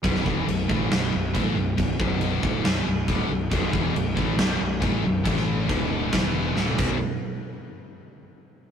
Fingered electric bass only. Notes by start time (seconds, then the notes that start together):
0.04 B0
0.26 E1
0.47 B0
0.70 A1
0.91 B0
1.14 B0
1.34 A1
1.55 B0
1.78 B0
2.00 B0
2.44 D1
2.65 B0
2.86 B0
3.08 D1
3.29 B0
3.52 B0
3.74 E1
3.95 B0
4.17 A1
4.37 B0
4.60 B0
4.82 A1
5.04 B0
5.25 A1
5.69 D1
6.13 E1
6.57 D1
6.79 B0